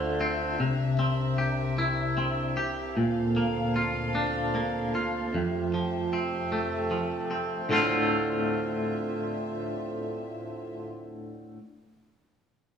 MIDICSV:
0, 0, Header, 1, 3, 480
1, 0, Start_track
1, 0, Key_signature, -1, "minor"
1, 0, Tempo, 790514
1, 361, Time_signature, 6, 3, 24, 8
1, 7758, End_track
2, 0, Start_track
2, 0, Title_t, "String section"
2, 0, Program_c, 0, 48
2, 0, Note_on_c, 0, 38, 48
2, 0, Note_on_c, 0, 50, 44
2, 0, Note_on_c, 0, 65, 47
2, 0, Note_on_c, 0, 72, 46
2, 0, Note_on_c, 0, 76, 53
2, 345, Note_off_c, 0, 65, 0
2, 345, Note_off_c, 0, 72, 0
2, 346, Note_off_c, 0, 38, 0
2, 346, Note_off_c, 0, 50, 0
2, 354, Note_on_c, 0, 62, 44
2, 354, Note_on_c, 0, 70, 43
2, 356, Note_on_c, 0, 36, 46
2, 360, Note_on_c, 0, 48, 41
2, 1772, Note_off_c, 0, 76, 0
2, 1779, Note_off_c, 0, 62, 0
2, 1779, Note_off_c, 0, 70, 0
2, 1780, Note_off_c, 0, 36, 0
2, 1782, Note_off_c, 0, 48, 0
2, 1796, Note_on_c, 0, 38, 45
2, 1798, Note_on_c, 0, 50, 41
2, 1798, Note_on_c, 0, 69, 43
2, 1800, Note_on_c, 0, 60, 42
2, 1800, Note_on_c, 0, 77, 53
2, 3221, Note_off_c, 0, 38, 0
2, 3222, Note_off_c, 0, 50, 0
2, 3222, Note_off_c, 0, 69, 0
2, 3223, Note_off_c, 0, 60, 0
2, 3223, Note_off_c, 0, 77, 0
2, 3231, Note_on_c, 0, 41, 43
2, 3232, Note_on_c, 0, 48, 40
2, 3234, Note_on_c, 0, 57, 40
2, 3235, Note_on_c, 0, 67, 36
2, 3235, Note_on_c, 0, 76, 44
2, 4660, Note_off_c, 0, 41, 0
2, 4660, Note_off_c, 0, 48, 0
2, 4661, Note_off_c, 0, 57, 0
2, 4661, Note_off_c, 0, 67, 0
2, 4662, Note_off_c, 0, 76, 0
2, 4680, Note_on_c, 0, 50, 38
2, 4680, Note_on_c, 0, 76, 43
2, 4681, Note_on_c, 0, 57, 33
2, 4681, Note_on_c, 0, 65, 34
2, 4682, Note_on_c, 0, 60, 36
2, 6581, Note_off_c, 0, 50, 0
2, 6581, Note_off_c, 0, 57, 0
2, 6581, Note_off_c, 0, 65, 0
2, 6581, Note_off_c, 0, 76, 0
2, 6582, Note_off_c, 0, 60, 0
2, 7758, End_track
3, 0, Start_track
3, 0, Title_t, "Clean electric guitar"
3, 0, Program_c, 1, 27
3, 0, Note_on_c, 1, 38, 46
3, 0, Note_on_c, 1, 50, 42
3, 0, Note_on_c, 1, 57, 45
3, 0, Note_on_c, 1, 60, 43
3, 118, Note_off_c, 1, 60, 0
3, 121, Note_off_c, 1, 38, 0
3, 125, Note_on_c, 1, 60, 42
3, 362, Note_off_c, 1, 50, 0
3, 362, Note_off_c, 1, 57, 0
3, 363, Note_off_c, 1, 60, 0
3, 364, Note_on_c, 1, 48, 43
3, 601, Note_on_c, 1, 60, 38
3, 840, Note_on_c, 1, 67, 41
3, 1083, Note_on_c, 1, 64, 45
3, 1314, Note_off_c, 1, 60, 0
3, 1321, Note_on_c, 1, 60, 41
3, 1552, Note_off_c, 1, 67, 0
3, 1559, Note_off_c, 1, 48, 0
3, 1560, Note_on_c, 1, 67, 44
3, 1798, Note_off_c, 1, 67, 0
3, 1799, Note_off_c, 1, 60, 0
3, 1799, Note_off_c, 1, 64, 0
3, 1802, Note_on_c, 1, 46, 46
3, 2043, Note_on_c, 1, 58, 36
3, 2282, Note_on_c, 1, 65, 39
3, 2519, Note_on_c, 1, 62, 42
3, 2755, Note_off_c, 1, 58, 0
3, 2762, Note_on_c, 1, 58, 36
3, 2998, Note_off_c, 1, 46, 0
3, 3003, Note_off_c, 1, 65, 0
3, 3005, Note_on_c, 1, 65, 39
3, 3237, Note_off_c, 1, 62, 0
3, 3239, Note_off_c, 1, 58, 0
3, 3245, Note_on_c, 1, 41, 40
3, 3485, Note_on_c, 1, 53, 35
3, 3719, Note_off_c, 1, 65, 0
3, 3722, Note_on_c, 1, 60, 35
3, 3960, Note_on_c, 1, 57, 38
3, 4188, Note_off_c, 1, 53, 0
3, 4196, Note_on_c, 1, 53, 33
3, 4429, Note_off_c, 1, 60, 0
3, 4437, Note_on_c, 1, 60, 33
3, 4441, Note_off_c, 1, 41, 0
3, 4670, Note_on_c, 1, 38, 49
3, 4674, Note_on_c, 1, 45, 44
3, 4676, Note_off_c, 1, 53, 0
3, 4677, Note_off_c, 1, 60, 0
3, 4678, Note_off_c, 1, 57, 0
3, 4680, Note_on_c, 1, 50, 48
3, 4686, Note_on_c, 1, 57, 50
3, 4689, Note_on_c, 1, 60, 53
3, 4694, Note_on_c, 1, 65, 49
3, 7025, Note_off_c, 1, 38, 0
3, 7027, Note_off_c, 1, 45, 0
3, 7030, Note_off_c, 1, 50, 0
3, 7033, Note_off_c, 1, 57, 0
3, 7035, Note_off_c, 1, 60, 0
3, 7037, Note_off_c, 1, 65, 0
3, 7758, End_track
0, 0, End_of_file